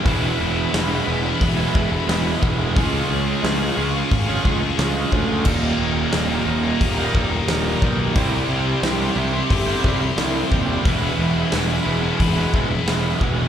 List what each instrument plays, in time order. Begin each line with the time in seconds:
Already playing: string section E5
0.04 picked electric bass E1, distorted electric guitar E2 B2 E3 G#3 B3 E4, string section G#4 B5, kick, open hi-hat
0.38 picked electric bass E1, distorted electric guitar E3 G#3 B3 E4
0.72 picked electric bass E1, distorted electric guitar E2 B2 E3 G#3 B3 E4, snare, open hi-hat
0.88 distorted electric guitar E3 G#3 B3 E4
1.06 picked electric bass E1, distorted electric guitar E2 B2 E3 G#3 B3 E4, muted distorted electric guitar stroke
1.22 distorted electric guitar E3 G#3 B3 E4, muted distorted electric guitar stroke
1.41 picked electric bass E1, kick, open hi-hat
1.57 distorted electric guitar E3 G#3 B3 E4
1.73 picked electric bass E1, distorted electric guitar E3 G#3 B3 E4, kick
1.90 distorted electric guitar E3 G#3 B3 E4, muted distorted electric guitar stroke
2.07 picked electric bass E1, distorted electric guitar E2 B2 E3 G#3 B3 E4, snare, open hi-hat
2.41 picked electric bass E1, distorted electric guitar E3 G#3 B3 E4, kick
2.57 distorted electric guitar E3 G#3 B3 E4
2.74 picked electric bass C#2, distorted electric guitar C#3 G#3 C#4 F4 G#4, string section F5 C#6, kick, open hi-hat
3.08 picked electric bass C#2, distorted electric guitar G#3 C#4 F4 G#4
3.42 picked electric bass C#2, distorted electric guitar C#3 G#3 C#4 F4 G#4, snare, open hi-hat
3.59 distorted electric guitar C#4 F4 G#4
3.76 picked electric bass C#2, distorted electric guitar G#3 C#4 F4 G#4, muted distorted electric guitar stroke
3.80 distorted electric guitar C#3
3.93 distorted electric guitar C#4 F4 G#4, muted distorted electric guitar stroke
4.11 picked electric bass G#1, kick, open hi-hat
4.26 distorted electric guitar C#4 F4 G#4
4.43 picked electric bass C#2, distorted electric guitar G#3 C#4 F4 G#4, kick
4.59 distorted electric guitar C#4 F4 G#4, muted distorted electric guitar stroke
4.77 picked electric bass C#2, distorted electric guitar C#3 G#3 C#4 F4 G#4, snare, open hi-hat
5.11 picked electric bass D2, distorted electric guitar G#3 C#4 F4 G#4, kick
5.28 distorted electric guitar C#4 F4 G#4
5.45 picked electric bass D#1, distorted electric guitar D#2 A#2 D#3 G3 A#3 D#4, string section G4 D#5 A#5, kick, crash
5.78 picked electric bass D#1, distorted electric guitar D#3 G3 A#3 D#4
6.12 picked electric bass D#1, distorted electric guitar D#2 A#2 D#3 G3 A#3 D#4, snare, open hi-hat
6.29 distorted electric guitar D#3 G3 A#3 D#4
6.46 picked electric bass D#1, distorted electric guitar D#2 A#2 D#3 G3 A#3 D#4, muted distorted electric guitar stroke
6.63 distorted electric guitar D#3 G3 A#3 D#4, muted distorted electric guitar stroke
6.81 picked electric bass D#1, kick, open hi-hat
6.97 distorted electric guitar D#3 G3 A#3 D#4
7.14 picked electric bass D#1, distorted electric guitar D#3 G3 A#3 D#4, kick
7.30 distorted electric guitar D#3 G3 A#3 D#4, muted distorted electric guitar stroke
7.48 picked electric bass D#1, distorted electric guitar D#2 A#2 D#3 G3 A#3 D#4, snare, open hi-hat
7.81 picked electric bass B1, distorted electric guitar D#3 G3 A#3 D#4, kick
7.99 distorted electric guitar D#3 G3 A#3 D#4
8.15 picked electric bass C2, distorted electric guitar C3 G3 C4 E4 G4, string section E5 C6, kick, open hi-hat
8.49 picked electric bass C2, distorted electric guitar G3 C4 E4
8.53 distorted electric guitar G4
8.83 picked electric bass C2, distorted electric guitar C3 G3 C4 E4 G4, snare, open hi-hat
9.00 distorted electric guitar C4 E4 G4
9.16 picked electric bass C2, distorted electric guitar C3 G3 C4 E4 G4, muted distorted electric guitar stroke
9.33 distorted electric guitar C4 E4 G4, muted distorted electric guitar stroke
9.50 picked electric bass G1, kick, open hi-hat
9.67 distorted electric guitar C4 E4 G4
9.84 picked electric bass C2, distorted electric guitar G3 C4 E4 G4, kick
9.99 distorted electric guitar C4 E4 G4, muted distorted electric guitar stroke
10.17 picked electric bass C2, distorted electric guitar C3 G3 C4 E4 G4, snare, open hi-hat
10.50 picked electric bass D#1, distorted electric guitar G3 C4 E4 G4, kick
10.67 distorted electric guitar C4 E4 G4
10.84 picked electric bass E1, distorted electric guitar E2 B2 E3 G#3 B3 E4, string section G#4 E5 B5, kick, open hi-hat
11.18 picked electric bass E1, distorted electric guitar E3 G#3 B3 E4
11.51 picked electric bass E1, distorted electric guitar E2 B2 E3 G#3 B3 E4, snare, open hi-hat
11.68 distorted electric guitar E3 G#3 B3 E4
11.85 picked electric bass E1, distorted electric guitar E2 B2 E3 G#3 B3 E4, muted distorted electric guitar stroke
12.02 distorted electric guitar E3 G#3 B3 E4, muted distorted electric guitar stroke
12.20 picked electric bass E1, kick, open hi-hat
12.36 distorted electric guitar E3 G#3 B3 E4
12.53 picked electric bass E1, distorted electric guitar E3 G#3 B3 E4, kick
12.70 distorted electric guitar E3 G#3 B3 E4, muted distorted electric guitar stroke
12.86 picked electric bass E1, distorted electric guitar E2 B2 E3 G#3 B3 E4, snare, open hi-hat
13.20 picked electric bass E1, distorted electric guitar E3 G#3 B3 E4, kick
13.36 distorted electric guitar E3 G#3 B3 E4